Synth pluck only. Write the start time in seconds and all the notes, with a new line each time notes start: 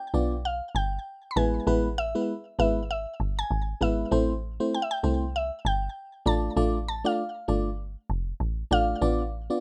Already playing: G5
0.45 F5
0.76 G5
1.31 B5
1.37 G#5
1.98 E5
2.60 E5
2.91 E5
3.39 G#5
3.82 E5
4.75 G5
4.82 E5
4.91 G5
5.36 E5
5.66 G5
6.27 A5
6.88 A5
7.06 F5
8.73 F5